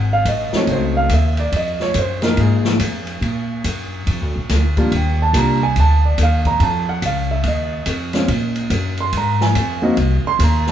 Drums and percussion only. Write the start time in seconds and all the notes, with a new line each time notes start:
0.25 hi-hat pedal, ride
0.53 snare
0.67 ride
1.09 hi-hat pedal, ride
1.37 ride
1.52 ride
1.80 snare
1.94 hi-hat pedal, ride
2.22 snare, ride
2.37 ride
2.65 snare
2.79 hi-hat pedal, ride
3.07 ride
3.22 ride
3.64 hi-hat pedal, ride
4.07 ride
4.49 snare, hi-hat pedal, ride
4.77 kick, ride
4.92 ride
5.34 hi-hat pedal, ride
5.76 ride
6.18 hi-hat pedal, ride
6.45 kick, ride
6.60 ride
7.02 hi-hat pedal, ride
7.44 ride
7.86 hi-hat pedal, ride
8.13 snare, ride
8.28 ride
8.56 ride
8.70 hi-hat pedal, ride
8.97 ride
9.13 ride
9.41 snare
9.55 hi-hat pedal, ride
9.97 ride
10.39 hi-hat pedal, ride
10.67 snare